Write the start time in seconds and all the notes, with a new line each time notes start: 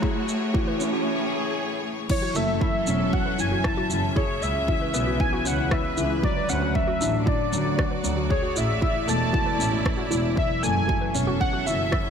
Already playing: A3 F#4 C#5
0.02 A2 E4 G#4, kick
0.28 A1, shaker
0.54 E3 F#4, kick
0.67 B4
0.80 C#4, shaker
0.93 F#4 G#4
2.09 E3 F#3 C#5, kick, crash
2.22 F#4
2.35 F#1 A3 E4 A4 E5, shaker
2.53 C#4
2.61 E3 E4 E5, kick
2.87 E1 C#4, shaker
3.04 E5
3.13 F#4 F#5, kick
3.25 B4
3.39 F#1 E3 G#5, shaker
3.52 F#4
3.64 E4 A5, kick, cross-stick
3.77 F#4
3.90 F#1 E3 E4, shaker
4.16 C#3 E4 G#4 C#5, kick
4.42 C#2 E5, shaker
4.68 E3 F#4 E5, kick
4.81 B4
4.94 B1 B3, shaker
5.07 F#4 B4
5.20 E3 G#5, kick
5.33 F#4
5.45 C#2 C#4 E4 F#5, shaker
5.71 E4 E5, kick, cross-stick
5.97 C#2 E3, shaker
6.23 D3 F#3 F#4 D5, kick
6.36 B4
6.49 D2 C#4 F#5, shaker
6.61 F#4
6.75 F#3 E5, kick
6.87 F#4
7.01 A1 D4 E4, shaker
7.16 F#4 D5
7.26 E4 D5, kick
7.53 D2 F#3, shaker
7.78 F#4, kick, cross-stick
7.91 B4
8.04 D2 F#3, shaker
8.17 F#4
8.30 A3 G#4 C#5, kick
8.43 F#4
8.56 A1 E4 E5, shaker
8.81 E3 E4, kick
8.86 E4
9.07 E1 A3 A5, shaker
9.12 G#3
9.33 E3 F#4, kick
9.46 B4
9.59 A1 C#4, shaker
9.72 F#4
9.86 kick, cross-stick
9.97 F#4
10.10 E1 E3 E4, shaker
10.36 E3 F#3 E4 E5, kick
10.63 F#1 A3 G#5, shaker
10.87 E3 C#4 F#4 E5, kick
11.01 B4
11.11 E1 C#4 A4, shaker
11.27 F#4
11.40 F#5, kick
11.53 F#4
11.66 F#1 E3 E4 E5, shaker
11.91 E4, kick, cross-stick